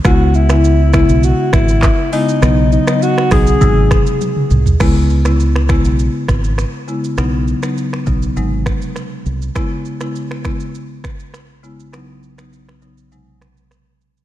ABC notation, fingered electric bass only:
X:1
M:4/4
L:1/16
Q:1/4=101
K:C#m
V:1 name="Fingered electric bass" clef=bass
C,,6- C,, B,,,2 z G,,,3 z3 | B,,,3 z3 B,,,2 G,,,3 z3 ^B,,,2 | C,,6- C,, B,,,2 z G,,,3 z3 | B,,,3 z3 B,,,2 G,,,3 z3 ^B,,,2 |
z16 | z16 |]